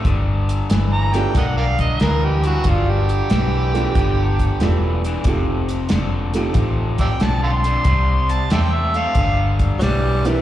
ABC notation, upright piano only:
X:1
M:4/4
L:1/8
Q:"Swing" 1/4=92
K:Gmix
V:1 name="Upright piano"
z3 [A,B,DFG] z4 | z3 [A,B,DFG]3 [A,B,DFG] z | [A,C_EFG] z2 [A,CEFG]3 z2 | z6 z [_B,CDEG] |]